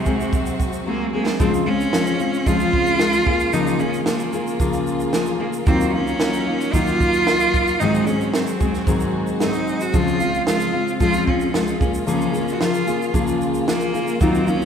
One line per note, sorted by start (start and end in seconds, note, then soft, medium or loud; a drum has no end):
0.00 0.86 C3 medium
0.00 1.36 D#3 medium
0.00 1.36 F#3 medium
0.00 1.37 G#3 medium
0.00 1.37 C4 medium
0.00 1.37 F#4 medium
0.05 0.85 F#3 medium
0.05 0.87 G#3 medium
0.05 0.87 C4 medium
0.05 0.88 G#4 medium
0.05 kick medium
0.05 shaker medium
0.20 shaker soft
0.33 kick loud
0.33 shaker medium
0.46 shaker medium
0.60 kick medium
0.60 shaker medium
0.73 shaker soft
0.86 1.13 F#3 medium
0.86 1.13 G#3 medium
0.86 1.12 A#3 medium
0.86 1.13 C4 medium
0.86 1.12 G#4 medium
1.13 1.39 F#3 soft
1.13 1.39 G#3 medium
1.13 1.38 A#3 medium
1.13 1.39 C4 medium
1.13 1.40 G#4 medium
1.26 snare loud
1.39 1.66 C#3 medium
1.39 5.63 C#3 medium
1.39 1.66 F3 medium
1.39 5.62 G#3 medium
1.39 1.66 G#3 medium
1.39 1.51 C4 medium
1.39 1.65 C4 medium
1.39 7.76 F4 medium
1.39 1.64 F4 loud
1.39 3.25 C5 medium
1.39 kick loud
1.39 shaker medium
1.54 shaker medium
1.66 1.92 G#3 soft
1.66 1.93 C4 medium
1.66 2.48 C#4 loud
1.66 1.93 F4 medium
1.80 shaker soft
1.93 2.20 F3 medium
1.93 2.20 G#3 medium
1.93 2.19 C4 medium
1.93 2.18 F4 medium
1.93 snare loud
1.93 shaker medium
2.06 shaker medium
2.20 2.46 G#3 soft
2.20 2.46 C4 medium
2.20 2.46 F4 medium
2.20 shaker medium
2.34 shaker soft
2.46 3.00 C#3 medium
2.46 2.99 F3 medium
2.46 2.99 G#3 medium
2.46 2.99 C4 medium
2.46 3.55 F4 loud
2.46 3.01 F4 medium
2.46 kick loud
2.46 shaker medium
2.60 shaker medium
2.73 kick medium
2.86 shaker medium
2.99 3.26 F3 medium
2.99 3.27 G#3 medium
2.99 3.27 C4 medium
2.99 3.26 F4 medium
2.99 snare loud
2.99 shaker medium
3.13 shaker medium
3.26 7.76 A#3 medium
3.26 3.53 A#3 soft
3.26 3.53 F4 soft
3.26 3.53 G#4 medium
3.26 kick loud
3.40 shaker medium
3.53 3.80 C#3 medium
3.53 3.80 F3 medium
3.53 3.80 A#3 medium
3.53 3.82 D#4 loud
3.53 3.79 F4 medium
3.53 3.78 G#4 medium
3.53 shaker medium
3.67 shaker medium
3.79 4.06 A#3 soft
3.79 4.06 C#4 loud
3.79 4.06 F4 soft
3.79 4.06 G#4 medium
3.79 shaker medium
3.94 shaker soft
4.06 4.33 F3 medium
4.06 4.33 A#3 medium
4.06 4.83 A#3 medium
4.06 4.33 F4 medium
4.06 4.32 G#4 medium
4.06 snare loud
4.06 shaker medium
4.19 shaker medium
4.33 4.59 A#3 soft
4.33 4.59 F4 soft
4.33 4.60 G#4 medium
4.33 shaker medium
4.47 shaker soft
4.60 5.13 C#3 medium
4.60 5.13 F3 medium
4.60 5.13 A#3 medium
4.60 5.14 F4 medium
4.60 5.13 G#4 medium
4.60 kick medium
4.60 shaker medium
4.73 shaker medium
4.87 shaker medium
5.00 shaker soft
5.13 5.40 F3 medium
5.13 5.26 A#3 medium
5.13 5.40 A#3 medium
5.13 5.40 F4 medium
5.13 5.39 G#4 medium
5.13 snare medium
5.13 shaker medium
5.26 shaker medium
5.40 5.52 A#3 medium
5.40 5.66 A#3 soft
5.40 5.67 F4 soft
5.40 5.67 G#4 medium
5.53 shaker medium
5.66 5.93 D#3 medium
5.66 9.90 D#3 medium
5.66 9.90 F#3 medium
5.66 5.94 F#3 medium
5.66 5.94 A#3 medium
5.66 5.91 C4 loud
5.66 5.93 D#4 medium
5.66 5.93 F4 loud
5.66 kick loud
5.66 shaker medium
5.81 shaker medium
5.93 6.20 A#3 soft
5.93 6.75 C#4 loud
5.93 6.20 D#4 soft
5.93 6.20 F4 medium
6.07 shaker soft
6.20 6.47 F#3 medium
6.20 6.47 A#3 medium
6.20 6.47 D#4 medium
6.20 6.46 F4 medium
6.20 snare loud
6.20 shaker medium
6.33 shaker medium
6.47 6.73 A#3 soft
6.47 6.73 D#4 soft
6.47 6.74 F4 medium
6.60 snare soft
6.60 shaker soft
6.74 7.32 D#3 medium
6.74 7.27 F#3 medium
6.74 7.26 A#3 medium
6.74 7.28 D#4 medium
6.74 7.81 F4 loud
6.74 7.27 F4 medium
6.74 kick loud
6.74 shaker medium
6.87 shaker medium
7.00 kick loud
7.00 shaker medium
7.13 shaker soft
7.27 7.81 F#3 medium
7.27 7.81 A#3 medium
7.27 7.81 D#4 medium
7.27 7.81 F4 medium
7.27 snare loud
7.27 shaker medium
7.40 shaker medium
7.54 kick loud
7.54 shaker soft
7.67 shaker medium
7.79 8.07 G#2 medium
7.79 8.07 D#3 medium
7.79 8.07 F#3 medium
7.79 14.17 G#3 medium
7.79 8.07 G#3 loud
7.79 8.06 C4 medium
7.79 8.08 D#4 loud
7.79 9.92 F#4 medium
7.79 8.05 G#4 medium
7.79 11.77 C5 medium
7.79 shaker medium
7.94 shaker medium
8.06 8.32 F#3 soft
8.06 8.33 G#3 soft
8.06 8.33 C4 soft
8.06 8.35 C#4 loud
8.06 8.33 G#4 medium
8.06 shaker medium
8.21 shaker soft
8.33 8.60 F#3 medium
8.33 8.60 G#3 medium
8.33 9.13 C4 medium
8.33 8.60 C4 medium
8.33 8.59 G#4 medium
8.33 snare loud
8.33 shaker medium
8.47 shaker medium
8.60 8.86 F#3 soft
8.60 8.87 G#3 soft
8.60 8.87 C4 soft
8.60 8.87 G#4 medium
8.60 kick loud
8.60 shaker soft
8.74 snare soft
8.74 shaker soft
8.87 9.41 G#2 medium
8.87 9.41 D#3 medium
8.87 9.39 F#3 medium
8.87 9.41 G#3 medium
8.87 9.41 C4 medium
8.87 9.42 G#4 medium
8.87 kick loud
8.87 shaker medium
9.00 shaker medium
9.27 shaker soft
9.40 9.94 F#3 medium
9.40 9.94 G#3 medium
9.40 9.93 C4 medium
9.40 9.83 D#4 loud
9.40 9.94 G#4 medium
9.40 snare loud
9.40 shaker medium
9.53 shaker soft
9.67 shaker soft
9.80 9.96 F#4 medium
9.80 shaker medium
9.94 10.20 C#3 medium
9.94 14.17 C#3 medium
9.94 14.17 F3 medium
9.94 10.21 F3 medium
9.94 10.21 G#3 medium
9.94 10.20 C4 medium
9.94 14.65 F4 medium
9.94 10.19 F4 medium
9.94 10.47 F4 loud
9.94 kick loud
9.94 shaker medium
10.08 shaker medium
10.20 10.46 G#3 soft
10.20 10.46 C4 medium
10.20 10.47 F4 medium
10.20 shaker medium
10.34 shaker soft
10.46 10.73 F3 medium
10.46 10.74 G#3 medium
10.46 10.73 C4 medium
10.46 10.97 F4 loud
10.46 10.72 F4 medium
10.46 snare loud
10.46 shaker medium
10.60 shaker medium
10.73 11.00 G#3 soft
10.73 11.00 C4 medium
10.73 11.00 F4 medium
10.88 shaker soft
11.00 11.54 C#3 medium
11.00 11.53 F3 medium
11.00 11.54 G#3 medium
11.00 11.53 C4 medium
11.00 11.55 F4 medium
11.00 11.26 F4 loud
11.00 kick loud
11.00 shaker medium
11.13 shaker medium
11.27 11.77 C#4 medium
11.27 kick medium
11.40 shaker soft
11.53 11.80 F3 medium
11.53 11.81 G#3 medium
11.53 11.81 C4 medium
11.53 11.79 F4 medium
11.53 snare loud
11.53 shaker medium
11.67 shaker medium
11.80 14.65 A#3 medium
11.80 12.06 A#3 soft
11.80 11.93 C#4 medium
11.80 12.06 F4 medium
11.80 12.06 G#4 medium
11.80 kick loud
11.80 shaker soft
11.94 shaker medium
12.06 12.34 C#3 medium
12.06 12.34 F3 loud
12.06 12.34 A#3 medium
12.06 12.55 C#4 medium
12.06 12.33 F4 medium
12.06 12.32 G#4 medium
12.06 shaker medium
12.21 shaker medium
12.33 12.60 A#3 soft
12.33 12.61 F4 medium
12.33 12.60 G#4 medium
12.33 shaker medium
12.48 shaker soft
12.54 12.62 F#4 medium
12.60 12.87 F3 medium
12.60 12.88 A#3 medium
12.60 13.14 F4 medium
12.60 12.87 F4 medium
12.60 12.86 G#4 medium
12.60 snare loud
12.60 shaker medium
12.74 shaker medium
12.87 13.13 A#3 soft
12.87 13.13 F4 soft
12.87 13.14 G#4 medium
12.87 shaker medium
13.02 shaker soft
13.14 13.67 C#3 medium
13.14 13.66 F3 medium
13.14 13.67 A#3 medium
13.14 13.68 F4 medium
13.14 13.68 G#4 medium
13.14 kick medium
13.14 shaker medium
13.27 shaker medium
13.41 shaker medium
13.54 shaker soft
13.67 13.94 F3 medium
13.67 13.94 A#3 medium
13.67 14.24 A#3 loud
13.67 13.93 F4 medium
13.67 13.93 G#4 medium
13.67 snare loud
13.67 shaker medium
13.81 shaker medium
13.94 14.20 A#3 soft
13.94 14.21 F4 medium
13.94 14.21 G#4 medium
13.94 shaker soft
14.07 shaker medium
14.20 14.47 D#3 medium
14.20 14.65 D#3 medium
14.20 14.48 F#3 loud
14.20 14.65 F#3 medium
14.20 14.47 A#3 medium
14.20 14.50 C4 loud
14.20 14.47 D#4 loud
14.20 14.46 F4 medium
14.20 kick loud
14.20 shaker medium
14.35 shaker medium
14.47 14.65 A#3 soft
14.47 14.65 C#4 loud
14.47 14.65 D#4 soft
14.47 14.65 F4 medium
14.47 shaker medium
14.62 shaker soft